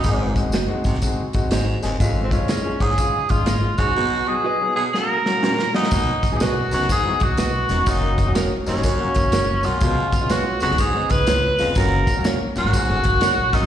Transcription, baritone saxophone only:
X:1
M:4/4
L:1/16
Q:"Swing" 1/4=123
K:B
V:1 name="Baritone saxophone" clef=bass
G,,3 z3 ^B,,2 z4 G,,2 D,,2 | ^E,,3 z3 G,,2 z6 G,,2 | B,,3 z3 B,,2 z4 A,,2 F,,2 | B,,2 z4 F,,2 G,,2 z4 F,,2 |
F,,2 z4 D,,2 F,,2 z4 F,,2 | B,,2 z4 ^E,,2 G,,2 z4 E,,2 | F,,2 z4 A,,2 G,,2 z4 F,,2 |]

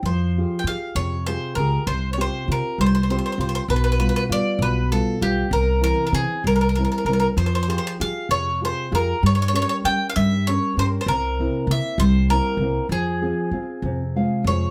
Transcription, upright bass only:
X:1
M:6/8
L:1/16
Q:3/8=65
K:Fm
V:1 name="Upright bass" clef=bass
F,,4 F, z F,,4 D,,2 | C,,4 C, z C,,4 C,,2 | =B,,,4 =B,, z B,,,4 B,,,2 | C,,4 C, z C,,4 C,,2 |
F,,4 F, z F,,4 F,,2 | G,,4 G, z G,,4 G,,2 | C,,4 C, z C,,4 C,,2 | F,,4 F, z F,,4 F,,2 |]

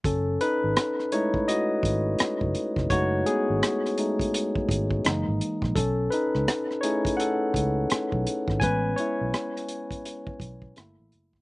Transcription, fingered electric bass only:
X:1
M:4/4
L:1/16
Q:"Swing 16ths" 1/4=84
K:F#dor
V:1 name="Fingered electric bass" clef=bass
F,,,2 z G,,, z6 G,,,2 z F,,, z ^E,,, | F,,,2 z G,,, z6 G,,,2 F,,, G,,, z ^A,,, | B,,,2 z C,, z6 C,,2 z B,,, z G,,, | A,,,2 z B,,, z6 B,,,2 =G,,, A,,, F,,,2 |]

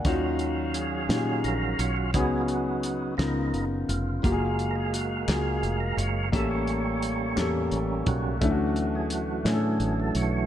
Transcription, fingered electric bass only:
X:1
M:6/8
L:1/8
Q:3/8=57
K:F#
V:1 name="Fingered electric bass" clef=bass
D,,3 A,, A,,, B,,, | C,,3 C,, F,,, E,,, | F,,,3 C,, E,,, F,,, | =A,,,3 =E,, A,,, B,,, |
=D,,3 =A,, =A,,, B,,, |]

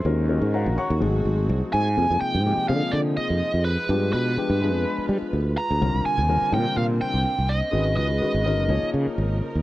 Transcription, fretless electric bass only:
X:1
M:4/4
L:1/16
Q:"Swing 16ths" 1/4=125
K:G#m
V:1 name="Fretless electric bass" clef=bass
D,,3 G,,2 A,,, z D,, G,,,2 G,,,2 ^B,,, z G,,2 | [K:Fdor] F,, F,, z A,,2 z D, z D,2 z F,, z F,,2 z | G,,2 =B,,2 z G,,2 F,, z2 G, z D,,2 z D,, | C,, C,, z E,,2 z B,, z B,,2 z C,, z C,,2 z |
A,,,2 _D,,2 z A,,,2 _G,,, D,, z _D, z A,,,2 z E,, |]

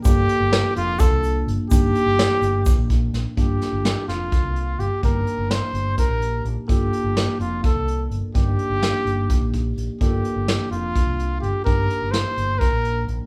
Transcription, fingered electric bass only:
X:1
M:7/8
L:1/16
Q:1/4=127
K:Gm
V:1 name="Fingered electric bass" clef=bass
G,,,2 z G,,,2 z F,,,2 z C,,3 G,,, z | G,,,2 z G,,,2 z G,,,2 z B,,,3 B,,, z | G,,,2 z G,,,2 z F,,,2 z C,,3 G,,, z | G,,,2 z G,,,2 z G,,,2 z B,,,3 B,,, z |
G,,,2 z G,,,2 z F,,,2 z C,,3 G,,, z | G,,,2 z G,,,2 z G,,,2 z B,,,3 B,,, z | G,,,2 z G,,,2 z F,,,2 z C,,3 G,,, z | G,,,2 z G,,,2 z G,,,2 z B,,,3 B,,, z |]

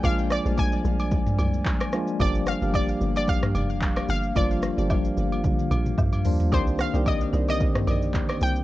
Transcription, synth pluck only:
X:1
M:4/4
L:1/16
Q:"Swing 16ths" 1/4=111
K:Gphr
V:1 name="Synth pluck"
f2 d2 a8- a2 z2 | d2 f2 d3 d f6 f2 | d12 z4 | c2 f2 e3 e6- e g2 |]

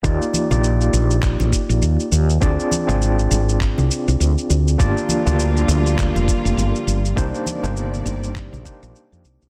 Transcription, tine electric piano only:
X:1
M:4/4
L:1/16
Q:"Swing 16ths" 1/4=101
K:Eb
V:1 name="Tine electric piano"
[B,EFGd]3 [B,EFGd] z12 | [CDFAd]3 [CDFAd] z12 | [B,DFGd]3 [B,DFGd] z12 | [B,DEGc]3 [B,DEGc] z6 [B,DEGc] z4 z |]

